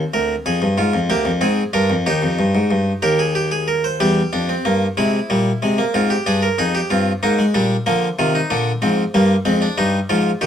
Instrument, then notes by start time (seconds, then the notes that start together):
harpsichord
Already playing: C4 C5
0.14 D2 A#4
0.46 F2 G#4
0.62 G2
0.78 G#2 F4
0.94 F2
1.10 D2 A#3 G4
1.25 F2
1.41 G#2 C4 G#4
1.73 G2 D4 A#4
1.90 F2
2.06 D#2 D#4 G4
2.22 F2
2.39 G2
2.55 G#2
2.71 G2
3.02 D#2 G4 A#4
3.19 G#4
3.35 G4
3.51 G#4
3.68 A#4
3.84 C5
4.00 E2 G3 G4
4.33 F2 D4
4.49 C4
4.65 G2 A#3
4.97 C3 G#3 E4
5.30 A#2 G3
5.62 C3 G#3
5.78 A#3
5.94 G#2 C4 F4
6.10 G4
6.26 G2 D4 G#4
6.42 A#4
6.58 F2 D#4 G#4
6.75 G4
6.90 G2 C4 F4
7.23 G#2 A#3 D#4
7.39 G#3
7.54 A#2 G3 D4
7.86 D3 F3 A#3
8.19 C3 D#3 F4
8.35 D#4
8.50 A#2 D3 D4
8.82 G#2 F3 C4
9.14 G2 G3 A#3
9.45 F2 G#3 C4
9.62 D4
9.78 G2 G3 D#4
10.09 G#2 F3 F4
10.41 A#2 D#3 G4